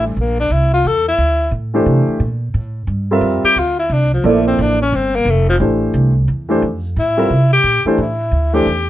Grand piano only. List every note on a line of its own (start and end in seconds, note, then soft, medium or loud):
0.00 0.10 A3 medium
0.00 0.10 D4 medium
0.00 0.10 G4 medium
0.00 0.11 C5 medium
1.74 2.18 E3 medium
1.74 2.18 A3 medium
1.74 2.18 D4 medium
1.74 2.19 G4 medium
1.74 2.19 C5 medium
3.11 3.54 G3 medium
3.11 3.55 C4 medium
3.11 3.55 F4 medium
3.11 3.55 A#4 medium
3.11 3.55 E5 medium
4.24 4.75 F3 medium
4.24 4.76 A#3 medium
4.24 4.76 E4 medium
4.24 4.76 A4 medium
4.24 4.76 D5 medium
5.60 6.11 E3 medium
5.60 6.11 A3 medium
5.60 6.11 D4 medium
5.60 6.12 G4 medium
5.60 6.12 C5 medium
6.49 6.60 E3 medium
6.49 6.61 A3 medium
6.49 6.61 D4 medium
6.49 6.61 G4 medium
6.49 6.62 C5 medium
7.17 7.29 G3 medium
7.17 7.29 C4 medium
7.17 7.29 F4 medium
7.17 7.29 A#4 medium
7.17 7.29 E5 medium
7.86 7.97 E3 medium
7.86 7.97 A3 medium
7.86 7.97 D4 medium
7.86 7.98 G4 medium
7.86 7.98 C5 medium
8.53 8.64 E3 medium
8.53 8.64 A3 medium
8.53 8.65 D4 medium
8.53 8.65 G4 medium
8.53 8.65 C5 medium